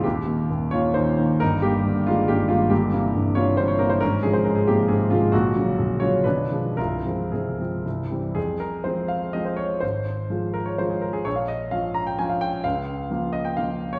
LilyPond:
<<
  \new Staff \with { instrumentName = "Grand piano" } { \time 3/4 \key ees \mixolydian \tempo 4 = 130 <bes g'>4. <f' des''>8 <ees' c''>4 | <ees' bes'>8 <bes g'>4 <aes f'>8 <bes g'>8 <aes f'>8 | \key f \minor <bes g'>4. <f' des''>8 c''16 des''16 bes'16 c''16 | <des' bes'>8 aes'16 c''16 bes'16 aes'16 <bes g'>8 <c' aes'>8 <aes f'>8 |
<bes ges'>4. <f' des''>8 <d' b'>4 | <f' bes'>4 <c' aes'>4 r4 | aes'8 bes'8 c''8 f''8 ees''16 c''16 des''8 | c''4. bes'16 des''16 c''16 aes'16 bes'16 aes'16 |
des''16 f''16 ees''8 f''8 bes''16 g''16 aes''16 f''16 g''8 | f''4. ees''16 g''16 f''8. des''16 | }
  \new Staff \with { instrumentName = "Grand piano" } { \clef bass \time 3/4 \key ees \mixolydian <ees,, ees,>8 <ees bes>8 <ees,, ees,>8 <ees bes>8 <ees,, ees,>8 <ees bes>8 | <g,, g,>8 <ees g>8 <g,, g,>8 <ees g bes>8 <g,, g,>8 <ees g bes>8 | \key f \minor <g,, g,>8 <c e bes>8 <g,, g,>8 <c e bes>8 <g,, g,>8 <c e bes>8 | <aes,, aes,>8 <c f aes>8 <aes,, aes,>8 <c f aes>8 <aes,, aes,>8 <c f>8 |
<bes,,, bes,,>8 <des ges des'>8 <bes,,, bes,,>8 <des ges des'>8 <b,,, b,,>8 <f gis d'>8 | <c,, c,>8 <f aes c'>8 <c,, c,>8 <f aes c'>8 <c,, c,>8 <e g c'>8 | f,4 <f aes c'>4 <f aes c'>4 | aes,,4 <f aes f'>4 <f aes f'>4 |
bes,,4 <f des' f'>4 <f des' f'>4 | des,4 <f bes f'>4 <f bes f'>4 | }
>>